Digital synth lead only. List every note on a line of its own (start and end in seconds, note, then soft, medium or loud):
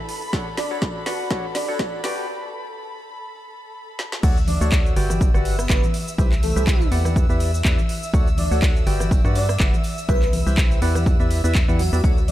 0.57 0.76 D5 medium
1.55 1.74 D5 medium
4.48 4.67 D5 medium
5.59 5.76 B4 medium
6.43 6.81 A4 medium
8.38 8.57 D5 medium
9.35 9.54 D5 medium
10.09 10.27 B4 medium
11.79 11.88 F#4 medium
11.93 12.00 F#4 medium
12.28 12.32 D5 medium